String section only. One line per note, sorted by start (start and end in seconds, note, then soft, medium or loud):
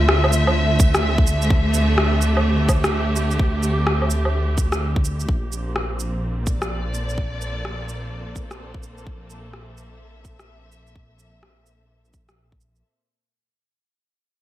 0.00 5.29 D3 medium
0.00 5.29 A3 medium
0.00 5.29 C4 medium
0.00 1.45 F4 medium
0.00 5.29 E5 medium
1.29 6.71 G4 medium
5.29 12.85 A#2 medium
5.51 12.84 A#3 medium
5.51 12.85 C4 medium
6.45 9.37 D5 medium
6.89 12.85 A4 medium
9.23 12.84 E5 medium